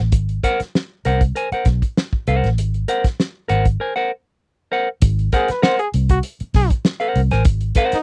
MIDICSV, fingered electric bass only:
0, 0, Header, 1, 3, 480
1, 0, Start_track
1, 0, Tempo, 610998
1, 101, Time_signature, 4, 2, 24, 8
1, 6306, End_track
2, 0, Start_track
2, 0, Title_t, "Fingered electric bass"
2, 0, Program_c, 0, 33
2, 0, Note_on_c, 0, 33, 70
2, 102, Note_off_c, 0, 33, 0
2, 102, Note_on_c, 0, 32, 86
2, 303, Note_off_c, 0, 32, 0
2, 831, Note_on_c, 0, 36, 72
2, 1029, Note_off_c, 0, 36, 0
2, 1304, Note_on_c, 0, 35, 95
2, 1411, Note_off_c, 0, 35, 0
2, 1788, Note_on_c, 0, 36, 92
2, 1894, Note_off_c, 0, 36, 0
2, 1915, Note_on_c, 0, 33, 80
2, 2029, Note_off_c, 0, 33, 0
2, 2029, Note_on_c, 0, 32, 87
2, 2229, Note_off_c, 0, 32, 0
2, 2750, Note_on_c, 0, 32, 73
2, 2951, Note_off_c, 0, 32, 0
2, 3945, Note_on_c, 0, 32, 101
2, 4147, Note_off_c, 0, 32, 0
2, 4668, Note_on_c, 0, 36, 85
2, 4867, Note_off_c, 0, 36, 0
2, 5145, Note_on_c, 0, 35, 90
2, 5250, Note_off_c, 0, 35, 0
2, 5622, Note_on_c, 0, 36, 99
2, 5728, Note_off_c, 0, 36, 0
2, 5751, Note_on_c, 0, 33, 86
2, 5858, Note_off_c, 0, 33, 0
2, 5858, Note_on_c, 0, 32, 109
2, 6058, Note_off_c, 0, 32, 0
2, 6306, End_track
3, 0, Start_track
3, 0, Title_t, "Muted fingered electric bass strokes"
3, 475, Note_on_c, 9, 29, 43
3, 553, Note_off_c, 9, 29, 0
3, 1193, Note_on_c, 9, 29, 43
3, 1271, Note_off_c, 9, 29, 0
3, 2392, Note_on_c, 9, 29, 41
3, 2470, Note_off_c, 9, 29, 0
3, 4317, Note_on_c, 9, 29, 49
3, 4395, Note_off_c, 9, 29, 0
3, 5034, Note_on_c, 9, 29, 57
3, 5113, Note_off_c, 9, 29, 0
3, 6230, Note_on_c, 9, 29, 50
3, 6306, Note_off_c, 9, 29, 0
3, 6306, End_track
0, 0, End_of_file